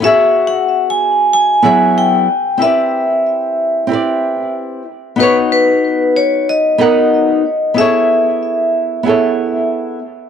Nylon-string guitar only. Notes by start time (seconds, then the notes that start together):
0.00 B3 E4 F#4
0.05 G#4 E5
1.62 F#3 B3 E4 G#4 E5
2.58 C4 E4 G4
2.62 B4 D5
3.87 C4 E4 G4
3.92 B4 D5
5.16 B3 D#4 F#4
5.21 B4 C#5
6.78 B3 D#4 F#4 A#4 F#5
7.74 B3 E4 G#4
7.79 A4 C#5
9.03 B3 E4 G#4
9.08 A4 C#5